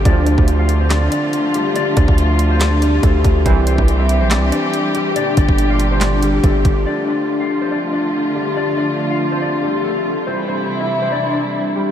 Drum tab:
HH |x-x-x-x-x-x-x-x-|x-x-x-x-x-x-x-x-|x-x-x-x-x-x-x-x-|x-x-x-x-x-x-x-x-|
CP |--------x-------|--------x-------|--------x-------|--------x-------|
SD |--------o-------|--------o-------|--------o-------|--------o-------|
BD |o--o------------|--oo--------o-o-|o--o------------|--oo--------o-o-|

HH |----------------|----------------|----------------|
CP |----------------|----------------|----------------|
SD |----------------|----------------|----------------|
BD |----------------|----------------|----------------|